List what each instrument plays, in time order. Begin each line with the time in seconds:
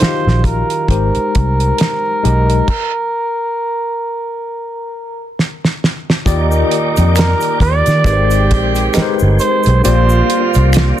Already playing: tine electric piano G4 D#5, flugelhorn C5
0.00 tine electric piano D#3 D#4 F4 F#4 F5, muted fingered electric bass stroke, snare, closed hi-hat
0.08 tine electric piano G4
0.27 fingered electric bass A#1, snare
0.44 flugelhorn A#4, kick, closed hi-hat
0.70 closed hi-hat
0.88 fingered electric bass G#1, tine electric piano G#3 D#4 G4 A#4 C5, flugelhorn A#4, kick, closed hi-hat
1.15 muted fingered electric bass stroke, closed hi-hat
1.35 fingered electric bass C2, kick, closed hi-hat
1.60 closed hi-hat
1.78 snare, closed hi-hat
2.23 fingered electric bass B1, tine electric piano G#3 D#4 G4 A#4 D#5, closed hi-hat
2.50 closed hi-hat
2.68 kick, crash
5.39 snare
5.65 snare
5.84 snare
6.10 snare
6.25 fingered electric bass D#2, horn section A#2 G3 D#4, tine electric piano D#3 D#4 F4 G4 D5, tonewheel organ D#3 A#3 G4 D5, kick, closed hi-hat, shaker
6.52 shaker
6.71 closed hi-hat
6.97 fingered electric bass F2, closed hi-hat, shaker
7.16 flugelhorn A#4, finger snap, snare, closed hi-hat, shaker
7.41 closed hi-hat, shaker
7.60 fingered electric bass D#2, flugelhorn D5, kick, closed hi-hat
7.86 fingered electric bass D#3, snare, closed hi-hat, shaker
8.04 fingered electric bass G#1, horn section D#3 C4 G4, tine electric piano G#3 D#4 G4 A#4 B4, tonewheel organ G#3 C4, kick, closed hi-hat, shaker
8.13 tine electric piano C5
8.31 closed hi-hat, shaker
8.51 fingered electric bass A#1, kick, closed hi-hat
8.75 closed hi-hat, shaker
8.94 tine electric piano G#3 D#4 G4 A#4 B4, finger snap, muted fingered electric bass stroke, snare, closed hi-hat, shaker
9.02 tine electric piano C5
9.19 fingered electric bass G1, shaker
9.39 flugelhorn C5, closed hi-hat, shaker
9.63 fingered electric bass B1, closed hi-hat, shaker
9.84 fingered electric bass A#1, horn section D3 C4 F4, tonewheel organ G3 A#3 D4, tine electric piano A#3 F4 G4 C5 D5, flugelhorn C5, closed hi-hat, shaker
10.09 shaker
10.30 closed hi-hat
10.54 fingered electric bass C2, closed hi-hat, shaker
10.73 finger snap, snare, closed hi-hat, shaker